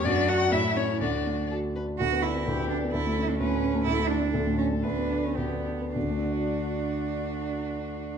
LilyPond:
<<
  \new Staff \with { instrumentName = "Violin" } { \time 2/4 \key d \major \tempo 4 = 122 d''8 fis''8 e''8 cis''8 | d''4 r4 | r4 g'4 | a'4 b'4 |
a'4 a'4 | b'4 g'8 r8 | fis'2~ | fis'2 | }
  \new Staff \with { instrumentName = "Violin" } { \time 2/4 \key d \major fis'4 e'4 | fis'4 a'8 b'8 | r2 | r2 |
r2 | r2 | r2 | r2 | }
  \new Staff \with { instrumentName = "Cello" } { \time 2/4 \key d \major d'8 fis'8 e'8 cis'8 | d'4 r4 | fis'8 e'4 d'8 | e'8. d'16 cis'4 |
e'8 d'4 cis'8 | d'8. cis'16 b4 | d'2~ | d'2 | }
  \new Staff \with { instrumentName = "Grand piano" } { \time 2/4 \key d \major fis,8 <d' fis'>8 a,8 <cis' e'>8 | d,8 a8 fis'8 d'8 | d,16 b16 d'16 b16 d,16 d16 d'16 b16 | d,16 a16 cis'16 a16 d,16 a,16 cis'16 a16 |
d,16 a16 d'16 a16 d,16 a,16 d'16 a16 | d,16 b16 d'16 b16 d,16 d16 d'16 b16 | <d, d a d' fis' d''>2~ | <d, d a d' fis' d''>2 | }
>>